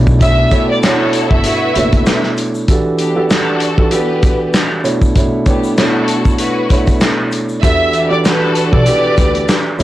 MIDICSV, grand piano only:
0, 0, Header, 1, 2, 480
1, 0, Start_track
1, 0, Key_signature, 1, "minor"
1, 0, Tempo, 618557
1, 163, Time_signature, 4, 2, 24, 8
1, 7629, End_track
2, 0, Start_track
2, 0, Title_t, "Grand piano"
2, 0, Program_c, 0, 0
2, 0, Note_on_c, 0, 47, 93
2, 0, Note_on_c, 0, 57, 82
2, 0, Note_on_c, 0, 62, 94
2, 0, Note_on_c, 0, 64, 84
2, 0, Note_on_c, 0, 73, 103
2, 141, Note_off_c, 0, 47, 0
2, 143, Note_off_c, 0, 57, 0
2, 143, Note_off_c, 0, 62, 0
2, 145, Note_off_c, 0, 64, 0
2, 145, Note_off_c, 0, 73, 0
2, 163, Note_on_c, 0, 47, 97
2, 165, Note_on_c, 0, 57, 85
2, 168, Note_on_c, 0, 62, 83
2, 170, Note_on_c, 0, 64, 78
2, 172, Note_on_c, 0, 73, 96
2, 383, Note_off_c, 0, 47, 0
2, 384, Note_off_c, 0, 57, 0
2, 386, Note_off_c, 0, 62, 0
2, 388, Note_off_c, 0, 64, 0
2, 390, Note_off_c, 0, 73, 0
2, 394, Note_on_c, 0, 47, 91
2, 396, Note_on_c, 0, 57, 95
2, 397, Note_on_c, 0, 62, 81
2, 399, Note_on_c, 0, 64, 89
2, 403, Note_on_c, 0, 73, 110
2, 621, Note_off_c, 0, 47, 0
2, 622, Note_off_c, 0, 57, 0
2, 623, Note_off_c, 0, 62, 0
2, 624, Note_off_c, 0, 64, 0
2, 626, Note_off_c, 0, 73, 0
2, 652, Note_on_c, 0, 47, 91
2, 653, Note_on_c, 0, 57, 81
2, 656, Note_on_c, 0, 62, 91
2, 657, Note_on_c, 0, 64, 95
2, 659, Note_on_c, 0, 73, 105
2, 1315, Note_off_c, 0, 47, 0
2, 1316, Note_off_c, 0, 57, 0
2, 1317, Note_off_c, 0, 62, 0
2, 1318, Note_off_c, 0, 64, 0
2, 1319, Note_off_c, 0, 73, 0
2, 1368, Note_on_c, 0, 47, 89
2, 1370, Note_on_c, 0, 57, 94
2, 1371, Note_on_c, 0, 62, 86
2, 1374, Note_on_c, 0, 64, 80
2, 1375, Note_on_c, 0, 73, 110
2, 2033, Note_off_c, 0, 47, 0
2, 2034, Note_off_c, 0, 57, 0
2, 2035, Note_off_c, 0, 62, 0
2, 2036, Note_off_c, 0, 64, 0
2, 2037, Note_off_c, 0, 73, 0
2, 2086, Note_on_c, 0, 52, 90
2, 2087, Note_on_c, 0, 62, 92
2, 2090, Note_on_c, 0, 66, 86
2, 2092, Note_on_c, 0, 67, 87
2, 2093, Note_on_c, 0, 69, 104
2, 2424, Note_off_c, 0, 52, 0
2, 2425, Note_off_c, 0, 62, 0
2, 2426, Note_off_c, 0, 66, 0
2, 2428, Note_off_c, 0, 67, 0
2, 2428, Note_off_c, 0, 69, 0
2, 2448, Note_on_c, 0, 52, 96
2, 2451, Note_on_c, 0, 62, 94
2, 2453, Note_on_c, 0, 66, 92
2, 2454, Note_on_c, 0, 67, 87
2, 2456, Note_on_c, 0, 69, 108
2, 2889, Note_off_c, 0, 52, 0
2, 2891, Note_off_c, 0, 62, 0
2, 2892, Note_off_c, 0, 66, 0
2, 2892, Note_off_c, 0, 67, 0
2, 2893, Note_off_c, 0, 69, 0
2, 2926, Note_on_c, 0, 52, 95
2, 2927, Note_on_c, 0, 62, 90
2, 2930, Note_on_c, 0, 66, 82
2, 2931, Note_on_c, 0, 67, 84
2, 2934, Note_on_c, 0, 69, 114
2, 3026, Note_off_c, 0, 52, 0
2, 3029, Note_off_c, 0, 62, 0
2, 3030, Note_off_c, 0, 66, 0
2, 3032, Note_off_c, 0, 67, 0
2, 3035, Note_off_c, 0, 69, 0
2, 3038, Note_on_c, 0, 52, 94
2, 3040, Note_on_c, 0, 62, 88
2, 3042, Note_on_c, 0, 66, 90
2, 3044, Note_on_c, 0, 67, 97
2, 3047, Note_on_c, 0, 69, 101
2, 3708, Note_off_c, 0, 52, 0
2, 3710, Note_off_c, 0, 62, 0
2, 3710, Note_off_c, 0, 66, 0
2, 3711, Note_off_c, 0, 67, 0
2, 3713, Note_off_c, 0, 69, 0
2, 3751, Note_on_c, 0, 47, 94
2, 3753, Note_on_c, 0, 57, 83
2, 3756, Note_on_c, 0, 62, 90
2, 3757, Note_on_c, 0, 64, 85
2, 3759, Note_on_c, 0, 73, 103
2, 3980, Note_off_c, 0, 47, 0
2, 3981, Note_off_c, 0, 57, 0
2, 3982, Note_off_c, 0, 62, 0
2, 3982, Note_off_c, 0, 64, 0
2, 3984, Note_off_c, 0, 73, 0
2, 4002, Note_on_c, 0, 47, 91
2, 4005, Note_on_c, 0, 57, 85
2, 4007, Note_on_c, 0, 62, 86
2, 4009, Note_on_c, 0, 64, 79
2, 4010, Note_on_c, 0, 73, 98
2, 4222, Note_off_c, 0, 47, 0
2, 4224, Note_off_c, 0, 57, 0
2, 4227, Note_off_c, 0, 62, 0
2, 4227, Note_off_c, 0, 64, 0
2, 4229, Note_off_c, 0, 73, 0
2, 4233, Note_on_c, 0, 47, 91
2, 4236, Note_on_c, 0, 57, 92
2, 4238, Note_on_c, 0, 62, 82
2, 4239, Note_on_c, 0, 64, 88
2, 4242, Note_on_c, 0, 73, 107
2, 4461, Note_off_c, 0, 47, 0
2, 4462, Note_off_c, 0, 57, 0
2, 4463, Note_off_c, 0, 62, 0
2, 4464, Note_off_c, 0, 64, 0
2, 4465, Note_off_c, 0, 73, 0
2, 4489, Note_on_c, 0, 47, 91
2, 4491, Note_on_c, 0, 57, 83
2, 4494, Note_on_c, 0, 62, 94
2, 4495, Note_on_c, 0, 64, 90
2, 4496, Note_on_c, 0, 73, 104
2, 5154, Note_off_c, 0, 47, 0
2, 5155, Note_off_c, 0, 57, 0
2, 5156, Note_off_c, 0, 62, 0
2, 5157, Note_off_c, 0, 64, 0
2, 5158, Note_off_c, 0, 73, 0
2, 5204, Note_on_c, 0, 47, 86
2, 5207, Note_on_c, 0, 57, 93
2, 5208, Note_on_c, 0, 62, 84
2, 5211, Note_on_c, 0, 64, 83
2, 5213, Note_on_c, 0, 73, 107
2, 5872, Note_off_c, 0, 47, 0
2, 5873, Note_off_c, 0, 57, 0
2, 5873, Note_off_c, 0, 62, 0
2, 5875, Note_off_c, 0, 64, 0
2, 5876, Note_off_c, 0, 73, 0
2, 5926, Note_on_c, 0, 52, 89
2, 5928, Note_on_c, 0, 62, 90
2, 5930, Note_on_c, 0, 66, 89
2, 5932, Note_on_c, 0, 67, 87
2, 5933, Note_on_c, 0, 69, 109
2, 6264, Note_off_c, 0, 52, 0
2, 6265, Note_off_c, 0, 62, 0
2, 6266, Note_off_c, 0, 66, 0
2, 6267, Note_off_c, 0, 67, 0
2, 6268, Note_off_c, 0, 69, 0
2, 6286, Note_on_c, 0, 52, 100
2, 6288, Note_on_c, 0, 62, 94
2, 6290, Note_on_c, 0, 66, 92
2, 6292, Note_on_c, 0, 67, 86
2, 6295, Note_on_c, 0, 69, 108
2, 6728, Note_off_c, 0, 52, 0
2, 6729, Note_off_c, 0, 62, 0
2, 6730, Note_off_c, 0, 66, 0
2, 6731, Note_off_c, 0, 67, 0
2, 6733, Note_off_c, 0, 69, 0
2, 6763, Note_on_c, 0, 52, 94
2, 6765, Note_on_c, 0, 62, 89
2, 6767, Note_on_c, 0, 66, 84
2, 6770, Note_on_c, 0, 67, 87
2, 6771, Note_on_c, 0, 69, 111
2, 6863, Note_off_c, 0, 52, 0
2, 6867, Note_off_c, 0, 62, 0
2, 6869, Note_off_c, 0, 66, 0
2, 6870, Note_off_c, 0, 67, 0
2, 6872, Note_off_c, 0, 69, 0
2, 6875, Note_on_c, 0, 52, 98
2, 6878, Note_on_c, 0, 62, 85
2, 6880, Note_on_c, 0, 66, 85
2, 6881, Note_on_c, 0, 67, 95
2, 6884, Note_on_c, 0, 69, 99
2, 7547, Note_off_c, 0, 52, 0
2, 7549, Note_off_c, 0, 62, 0
2, 7550, Note_off_c, 0, 66, 0
2, 7550, Note_off_c, 0, 67, 0
2, 7551, Note_off_c, 0, 69, 0
2, 7591, Note_on_c, 0, 47, 91
2, 7593, Note_on_c, 0, 57, 85
2, 7594, Note_on_c, 0, 62, 90
2, 7596, Note_on_c, 0, 64, 87
2, 7599, Note_on_c, 0, 73, 100
2, 7629, Note_off_c, 0, 47, 0
2, 7629, Note_off_c, 0, 57, 0
2, 7629, Note_off_c, 0, 62, 0
2, 7629, Note_off_c, 0, 64, 0
2, 7629, Note_off_c, 0, 73, 0
2, 7629, End_track
0, 0, End_of_file